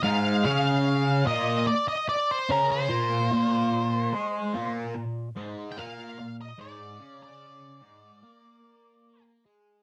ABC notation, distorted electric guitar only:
X:1
M:4/4
L:1/8
Q:1/4=73
K:Cm
V:1 name="Distorted electric guitar" clef=bass
[A,,A,] [_D,_D]2 [B,,B,] z2 [D,D] [B,,B,] | [B,,B,]2 [A,A] [B,,B,] B,, [A,,A,] [B,,B,] B,, | [A,,A,] [_D,_D]2 [A,,A,] [B,B]3 [A,A] |]